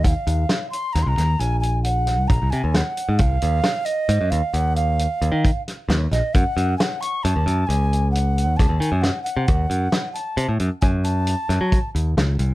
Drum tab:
HH |xxxxxxxxxxxxxx|xxxxxxxxxxxxxx|xxxxxxxxxxxxxx|xxxxxxxxxxxxxx|
SD |--o-oo---o--o-|--o--------ooo|--o-------o-o-|--o------o--o-|
BD |o---------o---|o---------o---|o---------o---|o-----o---o---|